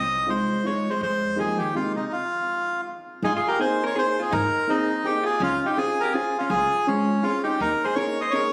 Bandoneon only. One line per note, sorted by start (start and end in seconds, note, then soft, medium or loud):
0.00 0.30 D#5 medium
0.30 0.66 C5 medium
0.66 0.90 C#5 medium
0.90 1.01 C5 medium
1.03 1.39 C5 medium
1.40 1.58 G#4 medium
1.58 1.75 G4 medium
1.76 1.93 F4 medium
1.96 2.12 D#4 medium
2.12 2.81 F4 medium
3.24 3.33 G#4 medium
3.36 3.48 G#4 medium
3.48 3.60 A#4 medium
3.61 3.85 C5 medium
3.86 3.97 C#5 medium
3.99 4.22 C5 medium
4.22 4.33 G#4 medium
4.33 4.70 A#4 medium
4.69 5.06 D#4 medium
5.05 5.24 G4 medium
5.25 5.42 G#4 medium
5.43 5.67 F4 loud
5.66 5.78 G4 medium
5.77 6.02 G#4 medium
6.00 6.13 A#4 medium
6.12 6.38 G#4 medium
6.38 6.50 F4 medium
6.50 6.87 G#4 medium
6.87 7.24 C#4 medium
7.23 7.42 F4 medium
7.43 7.60 G4 medium
7.61 7.85 A#4 medium
7.84 7.95 C5 medium
7.95 8.21 C#5 medium
8.21 8.33 D#5 medium
8.31 8.53 C#5 loud